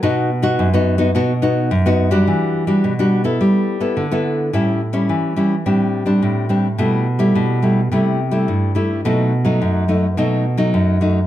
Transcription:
\new Staff \with { instrumentName = "Nylon-string guitar" } { \time 4/4 \key b \phrygian \tempo 4 = 106 << { <b dis' fis'>8 r16 <b dis' fis'>8 <b dis' fis'>8 <b dis' fis'>16 <b dis' fis'>16 r16 <b dis' fis'>8 r16 <b dis' fis'>8 <g d' fis'>16~ | <g d' fis'>8. <g d' fis'>8 <g d' fis'>8 <b e' a'>4 <b e' a'>8 <b e' a'>8. | <g cis' e'>8 r16 <g cis' e'>8. <g cis' e'>16 r16 <g c' d'>8. <g c' d'>8. <g c' d'>16 r16 | <g a e'>8 r16 <g a e'>8. <g a e'>16 r16 <g a e'>8 r16 <g a e'>8. <g a e'>8 |
<fis a dis'>8 r16 <fis a dis'>8. <fis a dis'>16 r16 <fis a dis'>8 r16 <fis a dis'>8. <fis a dis'>16 r16 | } \\ { b,4 fis,4 b,4 fis,4 | e4 b,4 g4 d4 | a,4 e4 a,4 a,4 | b,4 b,4 c4 g,4 |
b,4 fis,4 b,4 fis,4 | } >> }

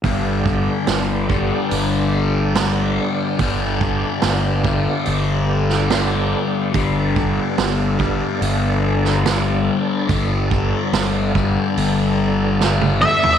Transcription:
<<
  \new Staff \with { instrumentName = "Lead electric guitar" } { \time 4/4 \key g \major \tempo 4 = 72 r1 | r1 | r1 | r2. r8 e''8 | }
  \new Staff \with { instrumentName = "Tonewheel organ" } { \time 4/4 \key g \major << { <b d' d''>1~ | <b d' d''>1~ | <b d' d''>1~ | <b d' d''>1 | } \\ { g'1~ | g'1 | a'1~ | a'1 | } >> }
  \new Staff \with { instrumentName = "Distorted electric guitar" } { \clef bass \time 4/4 \key g \major <g, d g>4. <g, d g>4. <g, d g>4 | <g, d g>4. <g, d g>4. <g, d g>4 | <g, d g>4. <g, d g>4. <g, d g>4 | <g, d g>4. <g, d g>4. <g, d g>4 | }
  \new Staff \with { instrumentName = "Fingered electric bass" } { \clef bass \time 4/4 \key g \major g,,4 g,,4 g,,2 | g,,4 g,,4 g,,2 | g,,4 g,,4 g,,2 | g,,4 g,,4 g,,2 | }
  \new DrumStaff \with { instrumentName = "Drums" } \drummode { \time 4/4 <hho bd>8 bd8 <hho sn>8 bd8 hho4 <hho sn>4 | <hho bd>8 bd8 <hho sn>8 bd8 hho8. sn16 <hho sn>4 | <hho bd>8 bd8 <hho sn>8 bd8 hho8. sn16 <hho sn>4 | <hho bd>8 bd8 <hho sn>8 bd8 hho4 sn16 tommh16 toml16 tomfh16 | }
>>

